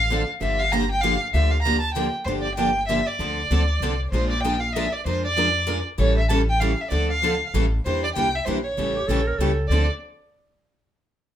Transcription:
Already playing: A1 F5
0.12 D3 F3 C4 D4 A4
0.40 G1 D3 F3 A#3 D4 G4 E5
0.60 F5
0.72 D3 F3 A#3 D4 G4 A#5
0.91 G5
1.01 D3 F3 A#3 D4 G4 F5
1.34 D2 D3 F3 A#3 D4 G4 E5
1.51 F5
1.62 D3 F3 A#5
1.66 A#3 D4 G4
1.81 A5
1.94 D3 F3 A#3 D4 G4 G5
2.25 G1 D3 F3 A#3 D4 C5
2.29 G4
2.42 D5
2.55 D3 F3 A#3 D4 G4 G5
2.88 D3 F3 A#3 D4 G4 E5
3.07 D5
3.19 D2 D3 F3 C4 D4 A4
3.51 D2 D3 F3 C4 D4 A4
3.80 C2 D3 F3 C4 D4 A4
4.11 A#1 F3 G#3 D4 F4 A#4 C5
4.30 D5
4.41 F3 G#3 D4 G5
4.45 F4 A#4
4.60 F5
4.72 F3 G#3 D#5 E5
4.76 D4 F4 A#4
4.92 D5
5.06 F2 F3 G#3 D4 F4 A#4 C5
5.25 D5
5.36 F3 G#3 D4 F4 A#4
5.68 F3 G#3 D4 F4 A#4
5.98 A1 E3 G3 C#4 E4 A4 C#5
6.17 E5
6.29 E3 G3 C#4 E4 A4 A5
6.49 G5
6.60 E3 G3 C#4 E4 A4 F5
6.81 E5
6.90 D2 D3 F3 C4 D4 A4 D5
7.10 F5
7.22 D3 F3 C4 D4 A4
7.54 A1 E3 G3 C#4 E4 A4
7.85 E2 E3 G3 A#3 D4 E4 G4 A#4 C5
8.04 D5
8.15 C2 E3 G3 A#3 D4 G4 G5
8.19 E4 A#4
8.36 E5
8.45 A#1 E3 G3 A#3 D4 E4 G4 A#4 C5
8.64 C#5
8.77 A1 C#3 E3 G3 A3 C#4 E4 G4 A4
8.96 G4
9.07 A#1 C#3 E3 G3 A3 C#4 E4 G4 A4
9.27 A#4
9.38 C#2 C#3 E3 G3 A3 C#4 E4 G4 A4
9.68 D2 D3 F3 C4 D4 A4 D5
9.72 A4

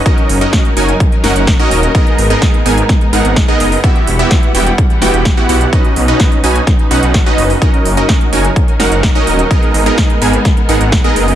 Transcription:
Already playing: C#4
0.06 F#3 C#4 D#4 F#4 A#4 D#5, kick, closed hi-hat
0.18 closed hi-hat
0.29 F#1, open hi-hat
0.41 C#4 D#4 F#4 A#4 D#5, closed hi-hat
0.53 kick, snare, closed hi-hat
0.65 closed hi-hat
0.77 F#1 C#4 D#4 F#4 A#4 G#5, open hi-hat
0.89 closed hi-hat
1.00 kick, closed hi-hat
1.12 closed hi-hat
1.24 F#1 C#4 D#4 F#4 A#4 F#5, snare, open hi-hat
1.36 F#1, closed hi-hat
1.47 kick, snare, closed hi-hat
1.59 C#4 D#4 F#4 A#4 D#5, closed hi-hat
1.71 D#1, open hi-hat
1.83 closed hi-hat
1.95 G#3 B3 D#4 G#4 A#4 D#5, kick, closed hi-hat
2.07 closed hi-hat
2.18 G#1, open hi-hat
2.30 B3 D#4 G#4 A#4 D#5, closed hi-hat
2.42 kick, snare, closed hi-hat
2.54 closed hi-hat
2.66 G#1 B3 D#4 G#4 A#4 G#5, open hi-hat
2.78 closed hi-hat
2.89 kick, snare, closed hi-hat
3.01 closed hi-hat
3.13 G#1 B3 D#4 G#4 A#4 F#5, open hi-hat
3.25 G#1, closed hi-hat
3.36 kick, snare, closed hi-hat
3.48 B3 D#4 G#4 A#4 D#5, closed hi-hat
3.60 F#1, open hi-hat
3.72 open hi-hat
3.84 E3 G3 B3 E4 F#4 G4 E5 F#5, kick, closed hi-hat
3.96 closed hi-hat
4.07 E1, open hi-hat
4.19 B3 E4 F#4 G4 E5, closed hi-hat
4.31 kick, snare, closed hi-hat
4.43 closed hi-hat
4.55 E1 B3 E4 F#4 G4 G5, open hi-hat
4.66 closed hi-hat
4.78 kick, closed hi-hat
4.90 closed hi-hat
5.02 E1 B3 E4 F#4 G4 G5, snare, open hi-hat
5.14 E1, closed hi-hat
5.25 kick, snare, closed hi-hat
5.37 B3 E4 F#4 G4 F#5, closed hi-hat
5.49 B1 B3 E4 F#4 G4 F#5, open hi-hat
5.61 closed hi-hat
5.73 C#4 D#4 F#4 B4 D#5, kick, closed hi-hat
5.85 closed hi-hat
5.96 B1, open hi-hat
6.08 C#4 D#4 F#4 B4 D#5, closed hi-hat
6.20 kick, snare, closed hi-hat
6.32 closed hi-hat
6.44 B1 C#4 D#4 F#4 B4 G#5, open hi-hat
6.55 closed hi-hat
6.67 kick, snare, closed hi-hat
6.79 closed hi-hat
6.91 B1 C#4 D#4 F#4 B4 F#5, open hi-hat
7.03 B1, closed hi-hat
7.14 kick, snare, closed hi-hat
7.26 C#4 D#4 F#4 B4 D#5, closed hi-hat
7.38 F#1, open hi-hat
7.50 open hi-hat
7.62 F#3 C#4 D#4 F#4 A#4 D#5, kick, closed hi-hat
7.74 closed hi-hat
7.85 F#1, open hi-hat
7.97 C#4 D#4 F#4 A#4 D#5, closed hi-hat
8.09 kick, snare, closed hi-hat
8.21 closed hi-hat
8.33 F#1 C#4 D#4 F#4 A#4 G#5, open hi-hat
8.45 closed hi-hat
8.56 kick, closed hi-hat
8.68 closed hi-hat
8.80 F#1 C#4 D#4 F#4 A#4 F#5, snare, open hi-hat
8.92 F#1, closed hi-hat
9.03 kick, snare, closed hi-hat
9.15 C#4 D#4 F#4 A#4 D#5, closed hi-hat
9.27 D#1, open hi-hat
9.39 closed hi-hat
9.51 G#3 B3 D#4 G#4 A#4 D#5, kick, closed hi-hat
9.63 closed hi-hat
9.74 G#1, open hi-hat
9.86 B3 D#4 G#4 A#4 D#5, closed hi-hat
9.98 kick, snare, closed hi-hat
10.10 closed hi-hat
10.22 G#1 B3 D#4 G#4 A#4 G#5, open hi-hat
10.33 closed hi-hat
10.45 kick, snare, closed hi-hat
10.57 closed hi-hat
10.69 G#1 B3 D#4 G#4 A#4 F#5, open hi-hat
10.81 G#1, closed hi-hat
10.92 kick, snare, closed hi-hat
11.04 B3 D#4 G#4 A#4 D#5, closed hi-hat
11.16 F#1, open hi-hat
11.28 open hi-hat

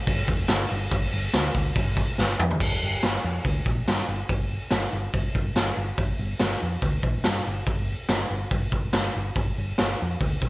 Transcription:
0.07 G1, kick, open hi-hat
0.28 F1, kick, open hi-hat
0.48 G1, snare, open hi-hat
0.70 G1, open hi-hat
0.91 G1, kick, open hi-hat
1.12 G1, open hi-hat
1.33 D2, snare, open hi-hat
1.55 D2, kick, open hi-hat
1.76 G1, kick, open hi-hat
1.97 kick, open hi-hat
2.18 G1, snare
2.39 F2, mid tom
2.51 floor tom
2.60 G1, kick, crash
2.83 G1
3.03 G1, snare, open hi-hat
3.24 F2
3.45 D2, kick, open hi-hat
3.66 A#1, kick
3.88 G2, snare, open hi-hat
4.09 G1
4.29 G1, kick, open hi-hat
4.71 G1, snare, open hi-hat
4.93 G1
5.13 G1, kick, open hi-hat
5.35 G1, kick
5.56 G1, snare, open hi-hat
5.77 G1
5.98 G1, kick, open hi-hat
6.19 G1
6.40 G1, snare, open hi-hat
6.63 F2
6.82 D2, kick, open hi-hat
7.03 A#1, kick
7.24 G2, snare, open hi-hat
7.47 G1
7.66 G1, kick, open hi-hat
8.09 G1, snare, open hi-hat
8.31 G1
8.51 G1, kick, open hi-hat
8.72 G1, kick
8.93 G1, snare, open hi-hat
9.16 G1
9.36 G1, kick, open hi-hat
9.58 G1
9.78 G1, snare, open hi-hat
10.02 F2
10.21 D2, kick, open hi-hat
10.41 A#1, kick

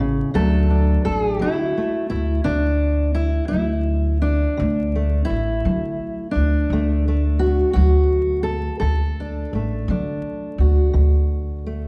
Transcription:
Already playing: A1 C#4 E4 A4
0.00 C#3
0.34 D2 D3 F#3 A3 D4 A4
0.70 D4
1.05 A1 G#4
1.32 G4
1.39 D3 F#3 E4
1.50 F#4
1.77 A3
2.10 D2 E4
2.44 D2 D3 D4
3.15 E4
3.48 F#3 E4
3.53 D2
4.22 D4
4.57 D2 D3
4.96 A3
5.25 E4
5.30 A1
5.65 D3 F#3
6.31 D4
6.35 D2
6.70 D2 D3 A3
7.08 A3
7.39 F#4
7.73 D2 F#3 F#4
8.43 A4
8.80 D2 D3 A4
9.20 D4
9.53 A1 A3
9.88 D3 F#3 D4
10.58 D2 F#4
10.93 D2 D3
11.66 A3

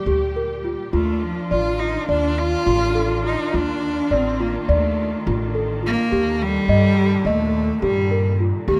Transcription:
Already playing: A#2 G3 G4
0.06 D2 G4
0.36 A#4
0.65 F4
0.92 D#2 D#3 A3 D4 F4
1.24 F3
1.51 A1 F4 D5
1.79 D#4 F4
2.09 D#2 D4 D5
2.38 F4
2.66 A1 F4
2.95 A4
3.24 D#4 F4
3.53 D#2 D4 F4
4.11 A1 C4 D5
4.40 A#3 F4
4.62 A#3
4.69 D#2 A3 D5
5.27 A1 F4
5.55 A4
5.83 A#3 F4
6.11 D#2 A#2 D3 G4
6.43 G3
6.68 G2 D#5
6.98 G4
7.25 D#2 A3 D#5
7.82 G2 G3 G4
8.11 A#4
8.40 F4
8.68 D#2 A#3 G4

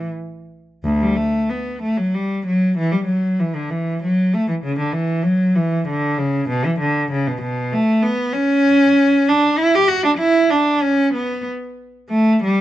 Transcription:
0.84 D2
1.01 G3
1.16 A3
1.50 B3
1.82 A3
1.97 F#3
2.14 G3
2.47 F#3
2.78 E3
2.92 G3
3.06 F#3
3.40 E3
3.55 D3
3.71 E3
4.04 F#3
4.34 A3
4.49 E3
4.64 C#3
4.79 D3
4.93 E3
5.23 F#3
5.56 E3
5.89 D3
6.18 C#3
6.49 B2
6.66 E3
6.81 D3
7.11 C#3
7.28 B2
7.42 B2
7.73 A3
8.03 B3
8.33 C#4
9.29 D4
9.58 E4
9.75 G4
9.88 F#4
10.04 D4
10.19 E4
10.50 D4
10.83 C#4
11.14 B3
12.09 A3
12.44 G3

